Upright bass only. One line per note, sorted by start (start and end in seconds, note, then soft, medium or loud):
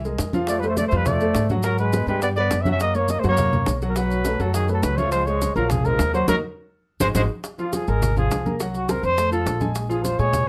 0.00 0.16 C2 medium
0.19 0.86 F2 medium
0.92 1.33 F2 loud
1.35 2.02 G#2 medium
2.07 2.48 G2 medium
2.51 3.18 F#2 medium
3.24 3.64 F#2 medium
3.67 4.34 B1 medium
4.40 4.80 F#2 medium
4.83 5.50 C#2 medium
5.56 5.96 A#1 medium
5.99 6.26 D#2 medium
6.28 6.39 D#2 medium
7.00 7.11 G#1 medium
7.15 7.26 G#1 medium
7.88 8.28 G#1 medium
8.31 8.98 C2 medium
9.03 9.44 F2 medium
9.46 10.13 A#1 medium
10.19 10.49 A#2 medium